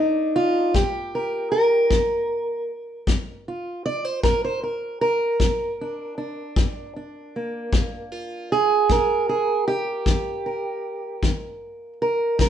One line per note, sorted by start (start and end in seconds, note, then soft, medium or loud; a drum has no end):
0.00 0.28 D#3 medium
0.00 2.70 A#3 soft
0.00 0.74 D4 medium
0.00 0.74 D#4 medium
0.36 0.74 F4 medium
0.74 1.44 A#2 medium
0.74 1.91 G4 medium
0.74 kick medium
1.15 1.50 A#4 medium
1.52 3.46 A#4 medium
1.90 2.60 A#2 medium
1.90 kick medium
3.07 3.77 A#2 medium
3.07 kick medium
3.48 3.85 F4 soft
3.86 4.05 D5 loud
4.05 4.23 C5 medium
4.23 4.93 A#2 medium
4.23 4.43 A#4 medium
4.23 kick medium
4.44 4.63 C5 medium
4.63 5.00 A#4 medium
5.01 8.12 A#4 loud
5.40 6.10 A#2 medium
5.40 kick medium
5.81 6.17 D4 soft
6.18 6.95 D4 medium
6.56 7.26 A#2 medium
6.56 kick medium
6.96 8.51 D4 soft
7.36 12.49 A#3 soft
7.73 8.43 A#2 medium
7.73 kick medium
8.12 8.89 F4 medium
8.52 9.28 G#4 loud
8.89 9.59 A#2 medium
8.89 10.07 A#4 loud
8.89 kick medium
9.29 9.67 G#4 medium
9.68 11.23 G4 loud
10.06 10.76 D#3 medium
10.06 kick medium
10.46 12.01 A#4 soft
11.23 11.93 D#3 medium
11.23 kick medium
12.02 12.40 A#4 medium
12.39 12.49 D#3 medium
12.39 12.49 A#4 medium
12.39 kick medium